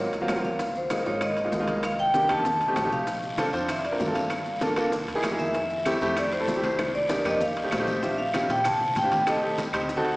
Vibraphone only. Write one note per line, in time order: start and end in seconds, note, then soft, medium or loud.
0.45 0.77 F5 medium
0.77 1.05 C5 medium
1.07 1.23 C#5 medium
1.22 1.80 D#5 medium
1.85 2.00 F5 loud
2.00 2.28 G5 loud
2.31 2.88 A5 loud
2.93 3.50 F5 medium
3.70 3.85 E5 medium
3.85 3.92 D5 medium
4.01 4.07 F5 medium
4.15 4.58 F5 medium
5.39 6.19 E5 medium
6.18 6.32 D5 medium
6.33 6.64 C5 medium
6.65 6.93 C5 medium
6.95 7.24 D5 loud
7.27 7.41 D#5 loud
7.41 7.84 F5 medium
7.73 8.05 C5 medium
8.03 8.18 E5 medium
8.18 8.50 F5 medium
8.50 8.64 G5 loud
8.66 8.97 A5 loud
8.98 9.26 G5 loud
9.29 9.57 D#5 medium